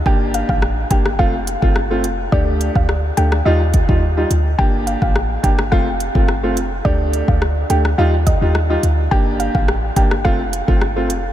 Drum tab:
HH |--x---x---x---x-|--x---x---x---x-|--x---x---x---x-|--x---x---x---x-|
SD |----r--r----r---|----r--r--------|----r--r----r---|----r--r----r---|
BD |o--o--o-o--o----|o--o------oo----|o--o--o-o--o----|o--o------o-----|

HH |--x---x---x---x-|
SD |----r--r----r---|
BD |o--o--o-o--o----|